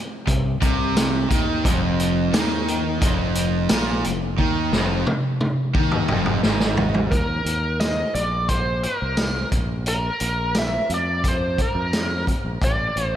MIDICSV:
0, 0, Header, 1, 5, 480
1, 0, Start_track
1, 0, Tempo, 685714
1, 1147, Time_signature, 4, 2, 24, 8
1, 9214, End_track
2, 0, Start_track
2, 0, Title_t, "Lead electric guitar"
2, 0, Program_c, 0, 29
2, 4976, Note_on_c, 0, 70, 81
2, 5459, Note_on_c, 0, 75, 80
2, 5476, Note_off_c, 0, 70, 0
2, 5686, Note_off_c, 0, 75, 0
2, 5702, Note_on_c, 0, 74, 87
2, 5942, Note_off_c, 0, 74, 0
2, 5944, Note_on_c, 0, 72, 82
2, 6183, Note_on_c, 0, 70, 67
2, 6193, Note_off_c, 0, 72, 0
2, 6638, Note_off_c, 0, 70, 0
2, 6916, Note_on_c, 0, 70, 81
2, 7406, Note_off_c, 0, 70, 0
2, 7410, Note_on_c, 0, 76, 87
2, 7623, Note_off_c, 0, 76, 0
2, 7659, Note_on_c, 0, 74, 88
2, 7890, Note_off_c, 0, 74, 0
2, 7896, Note_on_c, 0, 72, 83
2, 8127, Note_off_c, 0, 72, 0
2, 8129, Note_on_c, 0, 70, 72
2, 8571, Note_off_c, 0, 70, 0
2, 8848, Note_on_c, 0, 74, 91
2, 9209, Note_off_c, 0, 74, 0
2, 9214, End_track
3, 0, Start_track
3, 0, Title_t, "Overdriven electric guitar"
3, 0, Program_c, 1, 29
3, 190, Note_on_c, 1, 48, 69
3, 380, Note_off_c, 1, 48, 0
3, 431, Note_on_c, 1, 48, 112
3, 901, Note_off_c, 1, 48, 0
3, 915, Note_on_c, 1, 51, 98
3, 1143, Note_off_c, 1, 51, 0
3, 1149, Note_on_c, 1, 41, 101
3, 1621, Note_off_c, 1, 41, 0
3, 1628, Note_on_c, 1, 51, 101
3, 2100, Note_off_c, 1, 51, 0
3, 2107, Note_on_c, 1, 41, 98
3, 2579, Note_off_c, 1, 41, 0
3, 2588, Note_on_c, 1, 46, 97
3, 2820, Note_off_c, 1, 46, 0
3, 2832, Note_on_c, 1, 41, 69
3, 3021, Note_off_c, 1, 41, 0
3, 3075, Note_on_c, 1, 51, 94
3, 3304, Note_off_c, 1, 51, 0
3, 3308, Note_on_c, 1, 41, 93
3, 3540, Note_off_c, 1, 41, 0
3, 4025, Note_on_c, 1, 51, 92
3, 4258, Note_off_c, 1, 51, 0
3, 4267, Note_on_c, 1, 41, 104
3, 4500, Note_off_c, 1, 41, 0
3, 4503, Note_on_c, 1, 44, 98
3, 4978, Note_off_c, 1, 44, 0
3, 9214, End_track
4, 0, Start_track
4, 0, Title_t, "Fingered electric bass"
4, 0, Program_c, 2, 33
4, 194, Note_on_c, 2, 36, 79
4, 414, Note_off_c, 2, 36, 0
4, 434, Note_on_c, 2, 36, 91
4, 883, Note_off_c, 2, 36, 0
4, 917, Note_on_c, 2, 39, 86
4, 1136, Note_off_c, 2, 39, 0
4, 1155, Note_on_c, 2, 29, 96
4, 1603, Note_off_c, 2, 29, 0
4, 1631, Note_on_c, 2, 39, 98
4, 2081, Note_off_c, 2, 39, 0
4, 2113, Note_on_c, 2, 29, 92
4, 2562, Note_off_c, 2, 29, 0
4, 2596, Note_on_c, 2, 34, 82
4, 2814, Note_off_c, 2, 34, 0
4, 2840, Note_on_c, 2, 29, 75
4, 3057, Note_off_c, 2, 29, 0
4, 3070, Note_on_c, 2, 39, 95
4, 3291, Note_off_c, 2, 39, 0
4, 3306, Note_on_c, 2, 29, 89
4, 3529, Note_off_c, 2, 29, 0
4, 4022, Note_on_c, 2, 39, 88
4, 4247, Note_off_c, 2, 39, 0
4, 4268, Note_on_c, 2, 29, 89
4, 4490, Note_off_c, 2, 29, 0
4, 4510, Note_on_c, 2, 32, 81
4, 4960, Note_off_c, 2, 32, 0
4, 4986, Note_on_c, 2, 39, 87
4, 5182, Note_off_c, 2, 39, 0
4, 5215, Note_on_c, 2, 39, 75
4, 5612, Note_off_c, 2, 39, 0
4, 5703, Note_on_c, 2, 34, 85
4, 6195, Note_off_c, 2, 34, 0
4, 6314, Note_on_c, 2, 36, 81
4, 6605, Note_off_c, 2, 36, 0
4, 6666, Note_on_c, 2, 34, 82
4, 7059, Note_off_c, 2, 34, 0
4, 7147, Note_on_c, 2, 34, 81
4, 7540, Note_off_c, 2, 34, 0
4, 7627, Note_on_c, 2, 41, 90
4, 8118, Note_off_c, 2, 41, 0
4, 8225, Note_on_c, 2, 41, 76
4, 8619, Note_off_c, 2, 41, 0
4, 8713, Note_on_c, 2, 34, 76
4, 8809, Note_off_c, 2, 34, 0
4, 8832, Note_on_c, 2, 33, 89
4, 9027, Note_off_c, 2, 33, 0
4, 9071, Note_on_c, 2, 33, 76
4, 9214, Note_off_c, 2, 33, 0
4, 9214, End_track
5, 0, Start_track
5, 0, Title_t, "Drums"
5, 192, Note_on_c, 9, 36, 96
5, 195, Note_on_c, 9, 42, 97
5, 262, Note_off_c, 9, 36, 0
5, 265, Note_off_c, 9, 42, 0
5, 433, Note_on_c, 9, 36, 104
5, 435, Note_on_c, 9, 42, 61
5, 503, Note_off_c, 9, 36, 0
5, 505, Note_off_c, 9, 42, 0
5, 676, Note_on_c, 9, 42, 89
5, 676, Note_on_c, 9, 54, 103
5, 678, Note_on_c, 9, 38, 102
5, 746, Note_off_c, 9, 42, 0
5, 746, Note_off_c, 9, 54, 0
5, 748, Note_off_c, 9, 38, 0
5, 914, Note_on_c, 9, 36, 97
5, 916, Note_on_c, 9, 42, 65
5, 984, Note_off_c, 9, 36, 0
5, 986, Note_off_c, 9, 42, 0
5, 1155, Note_on_c, 9, 36, 87
5, 1157, Note_on_c, 9, 42, 73
5, 1225, Note_off_c, 9, 36, 0
5, 1227, Note_off_c, 9, 42, 0
5, 1397, Note_on_c, 9, 42, 69
5, 1467, Note_off_c, 9, 42, 0
5, 1637, Note_on_c, 9, 42, 83
5, 1637, Note_on_c, 9, 54, 111
5, 1638, Note_on_c, 9, 38, 111
5, 1707, Note_off_c, 9, 42, 0
5, 1707, Note_off_c, 9, 54, 0
5, 1708, Note_off_c, 9, 38, 0
5, 1878, Note_on_c, 9, 42, 72
5, 1948, Note_off_c, 9, 42, 0
5, 2112, Note_on_c, 9, 36, 109
5, 2112, Note_on_c, 9, 42, 104
5, 2182, Note_off_c, 9, 36, 0
5, 2182, Note_off_c, 9, 42, 0
5, 2347, Note_on_c, 9, 42, 66
5, 2417, Note_off_c, 9, 42, 0
5, 2585, Note_on_c, 9, 42, 96
5, 2585, Note_on_c, 9, 54, 113
5, 2587, Note_on_c, 9, 38, 112
5, 2655, Note_off_c, 9, 42, 0
5, 2655, Note_off_c, 9, 54, 0
5, 2657, Note_off_c, 9, 38, 0
5, 2831, Note_on_c, 9, 42, 75
5, 2901, Note_off_c, 9, 42, 0
5, 3070, Note_on_c, 9, 36, 51
5, 3140, Note_off_c, 9, 36, 0
5, 3309, Note_on_c, 9, 38, 66
5, 3379, Note_off_c, 9, 38, 0
5, 3547, Note_on_c, 9, 47, 71
5, 3617, Note_off_c, 9, 47, 0
5, 3784, Note_on_c, 9, 47, 76
5, 3854, Note_off_c, 9, 47, 0
5, 4023, Note_on_c, 9, 36, 82
5, 4093, Note_off_c, 9, 36, 0
5, 4140, Note_on_c, 9, 45, 68
5, 4210, Note_off_c, 9, 45, 0
5, 4258, Note_on_c, 9, 45, 81
5, 4328, Note_off_c, 9, 45, 0
5, 4380, Note_on_c, 9, 45, 71
5, 4450, Note_off_c, 9, 45, 0
5, 4504, Note_on_c, 9, 38, 85
5, 4574, Note_off_c, 9, 38, 0
5, 4622, Note_on_c, 9, 38, 80
5, 4692, Note_off_c, 9, 38, 0
5, 4741, Note_on_c, 9, 43, 93
5, 4811, Note_off_c, 9, 43, 0
5, 4860, Note_on_c, 9, 43, 82
5, 4930, Note_off_c, 9, 43, 0
5, 4982, Note_on_c, 9, 36, 89
5, 4985, Note_on_c, 9, 42, 65
5, 5052, Note_off_c, 9, 36, 0
5, 5055, Note_off_c, 9, 42, 0
5, 5223, Note_on_c, 9, 42, 60
5, 5293, Note_off_c, 9, 42, 0
5, 5464, Note_on_c, 9, 42, 71
5, 5464, Note_on_c, 9, 54, 99
5, 5465, Note_on_c, 9, 38, 103
5, 5534, Note_off_c, 9, 42, 0
5, 5534, Note_off_c, 9, 54, 0
5, 5535, Note_off_c, 9, 38, 0
5, 5706, Note_on_c, 9, 42, 62
5, 5776, Note_off_c, 9, 42, 0
5, 5941, Note_on_c, 9, 42, 90
5, 5942, Note_on_c, 9, 36, 77
5, 6011, Note_off_c, 9, 42, 0
5, 6012, Note_off_c, 9, 36, 0
5, 6183, Note_on_c, 9, 42, 61
5, 6253, Note_off_c, 9, 42, 0
5, 6419, Note_on_c, 9, 42, 78
5, 6419, Note_on_c, 9, 54, 97
5, 6421, Note_on_c, 9, 38, 100
5, 6489, Note_off_c, 9, 42, 0
5, 6489, Note_off_c, 9, 54, 0
5, 6491, Note_off_c, 9, 38, 0
5, 6662, Note_on_c, 9, 42, 62
5, 6663, Note_on_c, 9, 36, 95
5, 6732, Note_off_c, 9, 42, 0
5, 6733, Note_off_c, 9, 36, 0
5, 6901, Note_on_c, 9, 42, 76
5, 6971, Note_off_c, 9, 42, 0
5, 7140, Note_on_c, 9, 42, 63
5, 7210, Note_off_c, 9, 42, 0
5, 7383, Note_on_c, 9, 42, 75
5, 7383, Note_on_c, 9, 54, 106
5, 7385, Note_on_c, 9, 38, 96
5, 7453, Note_off_c, 9, 42, 0
5, 7453, Note_off_c, 9, 54, 0
5, 7455, Note_off_c, 9, 38, 0
5, 7628, Note_on_c, 9, 42, 58
5, 7698, Note_off_c, 9, 42, 0
5, 7868, Note_on_c, 9, 36, 80
5, 7870, Note_on_c, 9, 42, 83
5, 7938, Note_off_c, 9, 36, 0
5, 7940, Note_off_c, 9, 42, 0
5, 8109, Note_on_c, 9, 36, 70
5, 8109, Note_on_c, 9, 42, 56
5, 8179, Note_off_c, 9, 36, 0
5, 8179, Note_off_c, 9, 42, 0
5, 8352, Note_on_c, 9, 42, 72
5, 8352, Note_on_c, 9, 54, 100
5, 8353, Note_on_c, 9, 38, 101
5, 8422, Note_off_c, 9, 42, 0
5, 8422, Note_off_c, 9, 54, 0
5, 8423, Note_off_c, 9, 38, 0
5, 8591, Note_on_c, 9, 36, 71
5, 8597, Note_on_c, 9, 42, 50
5, 8661, Note_off_c, 9, 36, 0
5, 8667, Note_off_c, 9, 42, 0
5, 8831, Note_on_c, 9, 36, 91
5, 8836, Note_on_c, 9, 42, 68
5, 8901, Note_off_c, 9, 36, 0
5, 8906, Note_off_c, 9, 42, 0
5, 9076, Note_on_c, 9, 42, 60
5, 9146, Note_off_c, 9, 42, 0
5, 9214, End_track
0, 0, End_of_file